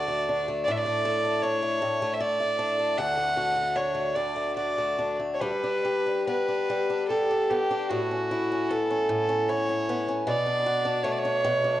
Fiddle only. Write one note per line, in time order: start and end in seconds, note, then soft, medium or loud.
0.00 0.46 D5 medium
0.64 0.73 D5 medium
0.71 0.79 E5 medium
0.77 1.43 D5 medium
1.42 2.15 C#5 medium
2.14 2.22 E5 medium
2.21 2.99 D5 medium
2.98 3.77 F#5 medium
3.76 4.16 C#5 medium
4.15 4.55 D5 medium
4.55 5.16 D5 medium
5.33 5.42 C#5 soft
5.40 6.26 B4 medium
6.26 7.06 B4 medium
7.08 7.51 A4 medium
7.49 7.91 G4 medium
7.90 8.71 F#4 medium
8.69 9.50 A4 medium
9.48 10.08 C#5 medium
10.27 11.05 D5 medium
11.03 11.13 C#5 medium
11.12 11.19 D5 medium
11.18 11.80 C#5 medium